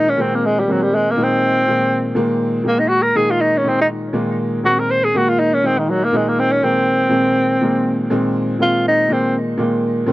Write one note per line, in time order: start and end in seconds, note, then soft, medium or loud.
0.00 0.11 A#2 medium
0.00 0.12 D#3 medium
0.00 0.12 G#3 medium
0.00 0.10 D#4 medium
0.00 0.12 D#4 medium
0.09 0.23 C#4 medium
0.17 0.61 A#2 medium
0.17 0.61 D#3 medium
0.17 0.62 G#3 medium
0.17 0.62 C4 medium
0.17 0.36 C4 medium
0.35 0.47 A#3 medium
0.46 0.61 G#3 medium
0.59 0.73 G3 medium
0.68 1.11 A#2 medium
0.68 1.11 D#3 medium
0.68 0.84 F#3 medium
0.68 1.11 G#3 medium
0.68 1.12 C4 medium
0.82 0.97 G3 medium
0.95 1.12 G#3 medium
1.11 1.25 A#3 medium
1.16 1.60 A#2 medium
1.16 1.60 D#3 medium
1.16 1.60 G#3 medium
1.16 1.61 D#4 medium
1.23 2.19 C4 medium
1.67 2.10 A#2 medium
1.67 2.11 D#3 medium
1.67 2.11 G#3 medium
1.67 2.11 A#3 medium
2.15 2.59 A#2 medium
2.15 2.60 D#3 medium
2.15 2.59 G#3 medium
2.15 2.60 A#3 loud
2.63 3.08 A#2 medium
2.63 3.09 D#3 medium
2.63 3.08 G#3 medium
2.63 3.09 A#3 medium
2.63 2.81 A#3 medium
2.79 2.90 D#4 medium
2.88 3.04 F#4 medium
3.02 3.18 A#4 medium
3.15 3.59 A#2 medium
3.15 3.59 D#3 medium
3.15 3.59 G#3 medium
3.15 3.59 D#4 medium
3.15 3.32 G#4 medium
3.31 3.43 F4 medium
3.41 3.59 D#4 medium
3.57 3.70 C#4 medium
3.63 4.08 A#2 medium
3.63 4.08 D#3 medium
3.63 4.08 G#3 medium
3.63 4.08 D#4 medium
3.68 3.80 C4 medium
3.81 3.87 D#4 medium
4.13 4.57 A#2 medium
4.13 4.57 D#3 medium
4.13 4.58 G#3 medium
4.13 4.58 A#3 loud
4.63 5.07 A#2 medium
4.63 5.07 D#3 medium
4.63 5.07 G#3 medium
4.63 5.08 C4 medium
4.63 4.81 F#4 medium
4.79 4.92 A#4 medium
4.91 5.06 C5 loud
5.04 5.18 G#4 medium
5.14 5.57 A#2 medium
5.14 5.58 D#3 medium
5.14 5.58 G#3 medium
5.14 5.58 A#3 medium
5.14 5.30 F#4 medium
5.29 5.41 F4 medium
5.39 5.55 D#4 medium
5.54 5.68 C#4 medium
5.63 6.06 A#2 medium
5.63 6.07 D#3 medium
5.63 6.07 G#3 medium
5.63 5.80 C4 medium
5.63 6.07 D#4 medium
5.79 5.91 D#3 medium
5.90 6.05 F#3 medium
6.04 6.18 A#3 medium
6.13 6.56 A#2 medium
6.13 6.56 D#3 medium
6.13 6.57 G#3 medium
6.13 6.57 D#4 medium
6.17 6.30 G#3 medium
6.28 6.41 A#3 medium
6.40 6.53 C4 medium
6.52 6.65 C#4 medium
6.62 7.06 A#2 medium
6.62 7.06 D#3 medium
6.62 7.06 G#3 medium
6.62 7.06 A#3 medium
6.62 8.12 C4 medium
7.09 7.54 A#2 medium
7.09 7.54 D#3 medium
7.09 7.55 G#3 medium
7.09 7.55 C4 medium
7.61 8.05 A#2 medium
7.61 8.05 D#3 medium
7.61 8.06 G#3 medium
7.61 8.05 A#3 medium
8.10 8.54 A#2 medium
8.10 8.54 D#3 medium
8.10 8.54 G#3 medium
8.10 8.55 C4 loud
8.59 9.03 A#2 medium
8.59 9.03 D#3 medium
8.59 9.04 G#3 medium
8.59 9.04 C4 medium
8.59 8.85 F4 medium
8.88 9.14 D#4 medium
9.09 9.53 A#2 medium
9.09 9.53 D#3 medium
9.09 9.53 G#3 medium
9.09 9.53 A#3 medium
9.09 9.36 C4 medium
9.57 10.02 A#2 medium
9.57 10.02 D#3 medium
9.57 10.03 G#3 medium
9.57 10.03 A#3 medium
10.06 10.13 A#2 medium
10.06 10.13 D#3 medium
10.06 10.13 G#3 medium
10.06 10.13 C4 loud